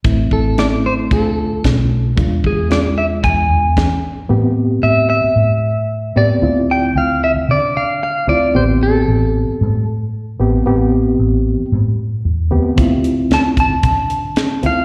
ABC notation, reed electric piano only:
X:1
M:4/4
L:1/8
Q:"Swing 16ths" 1/4=113
K:Ephr
V:1 name="Reed electric piano"
[A,CE]2 [A,CE]2 [A,DF]4 | [^G,DF]2 [G,DF]4 z2 | [K:Am] [B,CG]4 z3 [B,CG] | [CEF]4 z3 [CEF] |
[B,CG]4 z3 [B,CG] | [B,CG]4 z3 [B,CG] | [CEF]4 z3 [CEF] |]